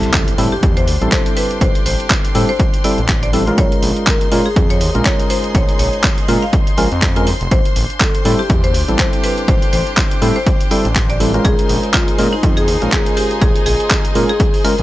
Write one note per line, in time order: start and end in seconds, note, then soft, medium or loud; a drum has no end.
0.00 0.34 G3 loud
0.00 0.34 C4 loud
0.00 3.58 D4 medium
0.00 0.34 E4 medium
0.00 0.34 A4 loud
0.00 14.83 C6 medium
0.00 closed hi-hat soft
0.00 impact medium
0.14 0.34 A4 medium
0.14 kick loud
0.14 clap loud
0.14 closed hi-hat medium
0.25 3.58 G4 medium
0.25 14.83 C5 medium
0.25 closed hi-hat medium
0.38 0.48 A2 medium
0.38 0.54 G3 medium
0.38 0.54 C4 medium
0.38 0.54 E4 medium
0.38 0.54 A4 loud
0.38 open hi-hat loud
0.52 0.63 G4 medium
0.63 0.89 E2 medium
0.63 kick loud
0.63 closed hi-hat medium
0.77 0.95 C5 medium
0.77 closed hi-hat medium
0.88 0.97 D2 medium
0.88 open hi-hat loud
1.01 1.09 A1 medium
1.01 2.32 G3 medium
1.01 2.32 C4 medium
1.01 2.33 E4 medium
1.01 2.33 A4 medium
1.01 closed hi-hat soft
1.12 1.26 C5 medium
1.12 kick loud
1.12 clap loud
1.12 closed hi-hat medium
1.26 closed hi-hat medium
1.37 1.51 B4 medium
1.37 open hi-hat loud
1.51 closed hi-hat soft
1.61 1.71 A1 loud
1.61 1.76 C5 medium
1.61 kick loud
1.61 closed hi-hat medium
1.75 closed hi-hat medium
1.86 1.95 A1 loud
1.86 2.06 C5 medium
1.86 open hi-hat loud
2.00 closed hi-hat soft
2.10 kick loud
2.10 clap loud
2.10 closed hi-hat medium
2.25 closed hi-hat medium
2.35 2.44 A2 medium
2.35 2.51 G3 medium
2.35 2.51 C4 medium
2.35 2.51 E4 medium
2.35 2.51 A4 loud
2.35 open hi-hat loud
2.49 2.67 C5 medium
2.60 kick loud
2.60 closed hi-hat medium
2.74 closed hi-hat medium
2.84 3.00 G3 medium
2.84 3.00 C4 medium
2.84 3.00 E4 medium
2.84 3.00 A4 loud
2.84 3.04 D5 medium
2.84 open hi-hat loud
2.98 3.52 A1 medium
2.98 closed hi-hat soft
3.09 kick loud
3.09 clap loud
3.09 closed hi-hat medium
3.23 3.41 D5 loud
3.23 closed hi-hat medium
3.33 3.45 G3 medium
3.33 3.45 C4 medium
3.33 3.45 E4 medium
3.33 3.45 A4 loud
3.33 open hi-hat loud
3.47 4.29 G#3 loud
3.47 4.29 C#4 medium
3.47 4.29 F4 medium
3.47 4.29 A#4 loud
3.47 closed hi-hat soft
3.58 3.67 A#1 loud
3.58 7.51 D#4 medium
3.58 3.83 C#5 medium
3.58 kick loud
3.58 closed hi-hat medium
3.72 closed hi-hat soft
3.83 3.92 A#1 loud
3.83 open hi-hat loud
3.97 closed hi-hat soft
4.04 7.52 G#4 medium
4.04 4.27 A#4 loud
4.04 kick loud
4.04 clap loud
4.04 closed hi-hat medium
4.21 closed hi-hat medium
4.32 4.41 A#2 medium
4.32 4.48 G#3 medium
4.32 4.48 C#4 medium
4.32 4.48 F4 medium
4.32 4.48 A#4 loud
4.32 open hi-hat loud
4.46 4.57 G#4 medium
4.56 4.82 F2 medium
4.56 kick loud
4.56 closed hi-hat medium
4.70 4.89 C#5 medium
4.70 closed hi-hat medium
4.81 4.90 D#2 medium
4.81 open hi-hat loud
4.95 5.02 A#1 medium
4.95 6.26 G#3 medium
4.95 6.26 C#4 medium
4.95 6.26 F4 medium
4.95 6.26 A#4 medium
4.95 closed hi-hat soft
5.05 5.20 C#5 medium
5.05 kick loud
5.05 clap loud
5.05 closed hi-hat medium
5.19 closed hi-hat soft
5.30 5.44 C5 medium
5.30 open hi-hat loud
5.44 closed hi-hat soft
5.55 5.64 A#1 loud
5.55 5.69 C#5 medium
5.55 kick loud
5.55 closed hi-hat medium
5.69 closed hi-hat soft
5.79 5.89 A#1 loud
5.79 5.99 C#5 medium
5.79 open hi-hat loud
5.93 closed hi-hat soft
6.04 kick loud
6.04 clap loud
6.04 closed hi-hat medium
6.18 closed hi-hat medium
6.28 6.38 A#2 medium
6.28 6.45 G#3 medium
6.28 6.45 C#4 medium
6.28 6.45 F4 medium
6.28 6.45 A#4 loud
6.28 open hi-hat loud
6.42 6.61 F5 medium
6.53 kick loud
6.53 closed hi-hat medium
6.67 closed hi-hat soft
6.77 6.87 A#1 medium
6.77 6.88 G#3 loud
6.77 6.88 C#4 medium
6.77 6.88 F4 loud
6.77 6.88 A#4 loud
6.77 6.97 G#5 loud
6.77 open hi-hat loud
6.92 7.33 F2 medium
6.92 closed hi-hat soft
7.02 kick loud
7.02 clap loud
7.02 closed hi-hat medium
7.16 7.30 G#3 medium
7.16 7.30 C#4 medium
7.16 7.30 F4 medium
7.16 7.30 A#4 loud
7.16 7.34 G#5 loud
7.16 closed hi-hat medium
7.27 open hi-hat loud
7.41 7.48 F1 loud
7.41 closed hi-hat soft
7.51 7.61 A1 loud
7.51 11.45 D4 medium
7.51 7.77 C5 loud
7.51 kick loud
7.51 closed hi-hat medium
7.65 closed hi-hat medium
7.76 7.85 A1 loud
7.76 open hi-hat loud
7.90 closed hi-hat soft
8.01 8.20 A4 medium
8.01 kick loud
8.01 clap loud
8.01 closed hi-hat medium
8.15 closed hi-hat medium
8.22 8.35 A2 medium
8.22 8.41 G3 medium
8.22 8.41 C4 medium
8.22 8.41 E4 medium
8.22 11.45 G4 medium
8.22 8.41 A4 loud
8.22 open hi-hat loud
8.39 8.50 G4 medium
8.50 8.76 E2 medium
8.50 kick loud
8.50 closed hi-hat medium
8.64 8.82 C5 medium
8.64 closed hi-hat soft
8.74 8.84 D2 medium
8.74 open hi-hat loud
8.88 8.95 A1 medium
8.88 10.19 G3 medium
8.88 10.19 C4 medium
8.88 10.19 E4 medium
8.88 10.19 A4 medium
8.88 closed hi-hat soft
8.99 9.13 C5 medium
8.99 kick loud
8.99 clap loud
8.99 closed hi-hat medium
9.13 closed hi-hat soft
9.24 9.38 B4 medium
9.24 open hi-hat loud
9.38 closed hi-hat soft
9.48 9.57 A1 loud
9.48 9.63 C5 medium
9.48 kick loud
9.48 closed hi-hat medium
9.62 closed hi-hat medium
9.73 9.82 A1 loud
9.73 9.93 C5 medium
9.73 open hi-hat loud
9.87 closed hi-hat soft
9.97 kick loud
9.97 clap loud
9.97 closed hi-hat medium
10.11 closed hi-hat medium
10.22 10.31 A2 medium
10.22 10.38 G3 medium
10.22 10.38 C4 medium
10.22 10.38 E4 medium
10.22 10.38 A4 loud
10.22 open hi-hat loud
10.36 10.54 C5 medium
10.46 kick loud
10.46 closed hi-hat medium
10.61 closed hi-hat medium
10.71 10.87 G3 medium
10.71 10.87 C4 medium
10.71 10.87 E4 medium
10.71 10.87 A4 loud
10.71 10.91 D5 medium
10.71 open hi-hat loud
10.85 11.39 A1 medium
10.85 closed hi-hat soft
10.96 kick loud
10.96 clap loud
10.96 closed hi-hat medium
11.10 11.28 D5 loud
11.10 closed hi-hat medium
11.20 11.32 G3 loud
11.20 11.32 C4 medium
11.20 11.32 E4 medium
11.20 11.32 A4 loud
11.20 open hi-hat loud
11.34 12.16 G#3 loud
11.34 12.16 C#4 medium
11.34 12.16 F4 medium
11.34 12.16 A#4 loud
11.34 closed hi-hat soft
11.45 11.54 A#1 loud
11.45 14.83 D#4 loud
11.45 11.70 G#4 loud
11.45 kick loud
11.45 closed hi-hat medium
11.54 14.83 G#4 medium
11.59 closed hi-hat medium
11.69 11.79 A#1 loud
11.69 open hi-hat loud
11.83 closed hi-hat soft
11.94 12.14 F4 loud
11.94 kick loud
11.94 clap loud
11.94 closed hi-hat medium
12.08 closed hi-hat medium
12.18 12.28 A#2 medium
12.18 12.35 G#3 medium
12.18 12.35 C#4 medium
12.18 12.35 F4 medium
12.18 12.35 A#4 loud
12.18 open hi-hat loud
12.33 12.44 D#4 medium
12.43 12.69 F2 medium
12.43 kick loud
12.43 closed hi-hat medium
12.57 12.75 G#4 loud
12.57 closed hi-hat medium
12.68 12.77 D#2 medium
12.68 open hi-hat loud
12.82 12.89 A#1 medium
12.82 14.13 G#3 medium
12.82 14.13 C#4 medium
12.82 14.13 F4 medium
12.82 14.13 A#4 medium
12.82 closed hi-hat soft
12.92 13.07 G#4 medium
12.92 kick loud
12.92 clap loud
12.92 closed hi-hat medium
13.06 closed hi-hat medium
13.17 13.31 G4 medium
13.17 open hi-hat loud
13.31 closed hi-hat soft
13.41 13.51 A#1 loud
13.41 13.56 G#4 medium
13.41 kick loud
13.41 closed hi-hat medium
13.56 closed hi-hat medium
13.66 13.76 A#1 loud
13.66 13.86 G#4 medium
13.66 open hi-hat loud
13.80 closed hi-hat soft
13.91 kick loud
13.91 clap loud
13.91 closed hi-hat medium
14.05 closed hi-hat medium
14.15 14.25 A#2 medium
14.15 14.31 G#3 loud
14.15 14.31 C#4 medium
14.15 14.31 F4 medium
14.15 14.31 A#4 loud
14.15 open hi-hat loud
14.29 14.48 G#4 medium
14.29 closed hi-hat soft
14.40 kick loud
14.40 closed hi-hat medium
14.54 open hi-hat medium
14.64 14.75 G#3 loud
14.64 14.75 C#4 loud
14.64 14.75 F4 medium
14.64 14.75 A#4 loud
14.64 14.83 A#4 medium
14.64 open hi-hat loud
14.79 14.83 A#1 medium
14.79 closed hi-hat soft